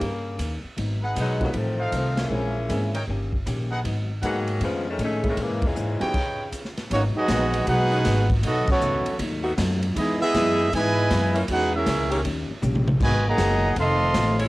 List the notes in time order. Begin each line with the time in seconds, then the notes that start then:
Already playing: C#3 A#3
0.01 G2, kick, ride
0.39 D#2, kick, hi-hat pedal, ride
0.64 muted upright bass stroke
0.77 G#1 G#2 F#3 B3 D#4, kick, ride
1.02 D#4 G#4 B4 F#5
1.16 B1 G#2 F#3 B3 D#4, kick, hi-hat pedal, ride
1.20 F#3 G#3 B3
1.40 G3 A3 C4 D#4 F4, kick, ride
1.44 D#3 F#3 A#3 C#4
1.51 A1 F2 D#3 B3, kick, ride
1.55 D#3 F3 A3 C4
1.79 D#4 A4 C5 F5
1.92 C2 F2 D#3 F3 A3 C4, kick, hi-hat pedal, ride
1.96 A3
2.17 G#3 A#3 C#4 E4, snare, ride
2.30 A#1 A#2 E3 G#3 A#3 C4 C#4 E4
2.69 G#1 A#2 E3 G#3 A#3 C4 C#4 E4, kick, hi-hat pedal, ride
2.94 D#4 A#4 C#5 G5, ride
3.07 G1 D#3 A#3 C#4 G4, kick
3.33 kick
3.46 A#1 D#3 A#3 C#4 G4, kick, hi-hat pedal, ride
3.71 D#4 G#4 B4 F#5
3.84 G#1 G#2 F#3 B3 D#4, kick, ride
4.22 G#2 D#3 F#3 G#3 A#3 B3 D#4 G#4 B4 F#5, kick, hi-hat pedal, ride
4.48 ride
4.60 F2 C#3 D#3 F3 G#3 A3 B3 C#4, kick, ride
4.89 D#3 G#3 A3 C#4
4.98 F2 A2 D#3 A3 C#4, kick, hi-hat pedal, ride
5.03 G#3 A3 C#4 D#4
5.22 G#3 A#3 C#4 E4 G#4, kick, ride
5.28 D#3 G#3 A3 C#4
5.37 A#2 C#3 E3 G#3 A#3 C#4, kick, ride
5.41 E3 G#3
5.50 G#2
5.62 E2 G#2 E3, kick, ride
5.66 A#2 C#3 G#3
5.75 G#2 A#2 E3 G#3 C#4, hi-hat pedal
5.99 F#3 B3 C#4 D#4 G4 B4 C#5 G5, muted upright bass stroke, ride
6.14 kick, crash, ride
6.52 kick, hi-hat pedal, ride
6.65 snare
6.77 snare, ride
6.90 G#1 G#2 F#3 A#3 B3 C#4 D#4 F#4 C#5, kick, ride
7.15 F#3 B3 D#4 F#4 G#4 D#5, muted upright bass stroke
7.28 A#1 G#2 D#3 F#3 G#3 B3 D#4 F#4, kick, snare, hi-hat pedal, ride
7.54 ride
7.67 B1 G#2 F#3 B3 D#4 F#4 G#4 B4 F#5, kick, ride
7.91 D#3 G#3 B3 C#4
8.04 G#1 G#2 F#3 B3 D#4, kick, snare, hi-hat pedal, ride
8.30 kick, ride
8.42 B1 B2 F#3 A3 B3 D#4 F#4 A4 D#5, kick, ride
8.67 F#3 A3 B3 C#4 F#4 A4, muted upright bass stroke, kick, crash
8.71 C#5
8.81 C#2 B2 F#3 A3 D#4, hi-hat pedal
9.06 muted upright bass stroke, ride
9.18 D#2 B2 F#3 A3 D#4, kick, ride
9.44 D#3 A3 B3 F#4
9.57 F#2 B2 F#3 A3 D#4, kick, snare, hi-hat pedal, ride
9.82 ride
9.95 E2 E3 G#3 B3 D#4 E4 G#4 D#5, kick, ride
10.19 G#3 B3 E4 G#4 D#5 E5, muted upright bass stroke
10.33 F#2 E3 G#3 B3 D#4 E4 G#4, kick, snare, hi-hat pedal, ride
10.72 G#2 B2 E3 G#3 B3 D#4 B4 D#5 G#5, kick, ride
10.76 E4
11.11 F#2 E3 G#3 B3 D#4, kick, snare, hi-hat pedal, ride
11.34 E3 A#3 C#4 E4, ride
11.48 E2 A#2 G#3 C#4 E4 F#4 B4, kick, ride
11.52 D#4 G#4 F#5
11.75 G#3 C#4 E4 G#4 A#4 E5
11.86 C#2 A#2 G#3 C#4 E4, kick, snare, hi-hat pedal, ride
12.11 D#3 A#3 C#4 G4, ride
12.24 D#2 D#3 A#3 C#4 G4, kick, ride
12.50 muted upright bass stroke
12.62 A#1 D#3 A#3 C#4 G4, hi-hat pedal, mid tom
12.75 mid tom
12.88 mid tom
13.00 G#1 G#2 B2 D#3 F#3 G#3 B3 D#4 F#4 B4 D#5 G#5, kick, crash
13.27 D#3 F#3 A#3 G#4 D#5 F#5 A#5
13.37 F#1 G#2 B2 F#3 B3 D#4 G#4, kick, snare, hi-hat pedal, ride
13.76 F1 F2 D#3 A3 C4 F5, kick, ride
13.80 A4 D#5 C6
14.14 A1 F2 D#3 A3 C4, kick, snare, hi-hat pedal, ride
14.39 G#3 C#4 E4 C#5, ride